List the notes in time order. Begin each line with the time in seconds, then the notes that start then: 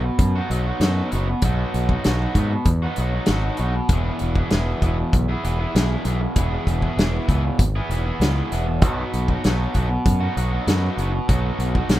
Already playing: B2
0.04 muted overdriven electric guitar stroke
0.19 F#2, kick, closed hi-hat
0.36 B3 D#4 F#4
0.50 B1 F#3 B3 D#4 F#4, closed hi-hat
0.66 B3 D#4 F#4
0.80 F#2 B2 F#3 B3 D#4 F#4, snare, closed hi-hat
1.12 F#1 F#3 B3 D#4 F#4, closed hi-hat
1.29 muted overdriven electric guitar stroke
1.42 B1 B2 F#3 B3 D#4 F#4, kick, closed hi-hat
1.74 B1, closed hi-hat
1.89 B3 D#4 F#4, kick
2.04 B1 B2 F#3 B3 D#4 F#4, snare, closed hi-hat
2.35 G#2 F#3 B3 D#4, kick, closed hi-hat
2.40 F#4
2.53 muted overdriven electric guitar stroke
2.65 E2, kick, closed hi-hat
2.82 B3 D#4 F#4
2.96 B1 F#3, closed hi-hat
3.00 B3 D#4 F#4
3.13 B3 D#4 F#4
3.26 G#1 B2 F#3 B3, snare, closed hi-hat
3.30 D#4 F#4
3.57 B1 F#3 B3 D#4, closed hi-hat
3.61 F#4
3.76 muted overdriven electric guitar stroke
3.89 E1 E2 B2 E3 B3, kick, closed hi-hat
3.93 E4 G#4
4.19 E1, closed hi-hat
4.35 E3 B3 E4 G#4, kick
4.51 E1 E2 B2 E3 B3 E4 G#4, snare, closed hi-hat
4.82 E1 E3 B3 E4 G#4, kick, closed hi-hat
4.98 muted overdriven electric guitar stroke
5.13 B1, kick, closed hi-hat
5.29 E3 B3 E4 G#4
5.44 E1 E3 B3 E4 G#4, closed hi-hat
5.59 E3 B3 E4 G#4
5.75 B1 E2 B2 E3 B3 E4 G#4, snare, closed hi-hat
6.05 B1 E3 B3 E4 G#4, closed hi-hat
6.21 muted overdriven electric guitar stroke
6.36 E1 E2 B2 E3 B3 E4 G#4, kick, closed hi-hat
6.67 E1, kick, closed hi-hat
6.82 E3 B3 E4 G#4, kick
6.97 E1 E2 B2 E3 B3 E4 G#4, snare, closed hi-hat
7.28 C#2 E3 B3 E4 G#4, kick, closed hi-hat
7.45 muted overdriven electric guitar stroke
7.59 G#1, kick, closed hi-hat
7.76 E3 B3 E4 G#4
7.90 E1 E3 B3 E4 G#4, closed hi-hat
8.05 E3 B3 E4 G#4
8.20 C#2 E2 B2 E3 B3 E4, snare, closed hi-hat
8.24 G#4
8.52 E1 E3 B3 E4 G#4, closed hi-hat
8.67 muted overdriven electric guitar stroke
8.82 B1 B2 F#3 B3 D#4 F#4, kick, closed hi-hat
9.14 B1, closed hi-hat
9.28 B3 D#4 F#4, kick
9.44 B1 B2 F#3 B3 D#4 F#4, snare, closed hi-hat
9.74 B1 F#3 B3 D#4 F#4, kick, closed hi-hat
9.90 muted overdriven electric guitar stroke
10.06 F#2, kick, closed hi-hat
10.21 B3 D#4 F#4
10.36 B1 F#3 B3 D#4 F#4, closed hi-hat
10.53 B3 D#4 F#4
10.67 F#2 B2 F#3 B3 D#4 F#4, snare, closed hi-hat
10.97 F#1 F#3 B3 D#4 F#4, closed hi-hat
11.13 muted overdriven electric guitar stroke
11.28 B1 B2 F#3 B3 D#4 F#4, kick, closed hi-hat
11.59 B1, closed hi-hat
11.75 B3 D#4 F#4, kick
11.89 B1 B2 F#3 B3 D#4 F#4, snare, closed hi-hat